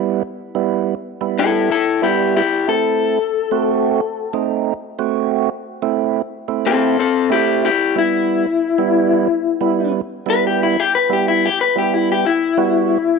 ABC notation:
X:1
M:4/4
L:1/16
Q:1/4=91
K:Em
V:1 name="Clean electric guitar"
z8 [EA]2 [EA]2 [EG]2 [EG]2 | A12 z4 | z8 [CA]2 [CA]2 [EG]2 [EG]2 | E12 z2 B G |
E G B G E G B G E G E6 |]
V:2 name="Tonewheel organ"
[G,B,E] z2 [G,B,E]2 z2 [G,B,E]3 z2 [G,B,E]2 z2 | [A,CE]3 z2 [A,CF]3 z2 [A,C^D]2 z2 [A,CF]2- | [A,CF] z2 [A,CE]2 z2 [A,CE]3 z2 [A,CE]2 z2 | [G,B,E]3 z2 [G,B,E]3 z2 [G,B,E]2 z2 [G,B,E]2- |
[G,B,E] z2 [G,B,E]2 z2 [G,B,E]3 z2 [G,B,F]2 z2 |]